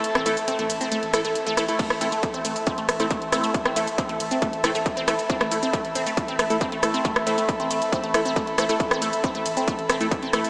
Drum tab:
CC |----------------|x---------------|----------------|----------------|
RD |--x---x---x---x-|--x---x---x---x-|--x---x---x---x-|--x---x---x---x-|
HH |xxoxxxoxxxoxxxox|xxoxxxoxxxoxxxox|xxoxxxoxxxoxxxox|xxoxxxoxxxoxxxox|
SH |x-xxx-xxx-xxx-xx|x-xxx-xxx-xxx-xx|x-xxx-xxx-xxx-xx|x-xxx-xxx-xxx-xx|
SD |-r--------r---r-|-r--------r---r-|-r--------r---r-|-r--------r---r-|
BD |----------------|o---o---o---o---|o---o---o---o---|o---o---o---o---|

CC |----------------|----------------|
RD |--x---x---x---x-|--x---x---x---x-|
HH |xxoxxxoxxxoxxxox|xxoxxxoxxxoxxxox|
SH |x-xxx-xxx-xxx-xx|x-xxx-xxx-xxx-xx|
SD |-r--------r---r-|-r--------r---r-|
BD |o---o---o---o---|o---o---o---o---|